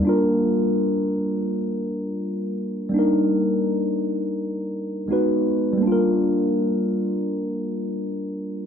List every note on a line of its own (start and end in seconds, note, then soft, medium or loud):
0.00 2.87 G3 medium
0.00 2.88 A#3 medium
0.05 2.89 D4 medium
0.05 2.90 F4 medium
0.09 2.92 A#4 medium
2.89 5.04 G3 medium
2.89 5.05 A#3 medium
2.94 5.06 D4 medium
2.94 5.07 D#4 medium
2.99 5.09 A#4 medium
5.08 5.81 G#3 medium
5.08 5.82 B3 medium
5.08 5.82 D#4 medium
5.08 5.83 F#4 medium
5.13 5.83 B4 medium
5.73 8.66 G3 medium
5.78 8.66 A#3 medium
5.83 8.66 D4 medium
5.87 8.66 F4 medium
5.92 8.66 A#4 medium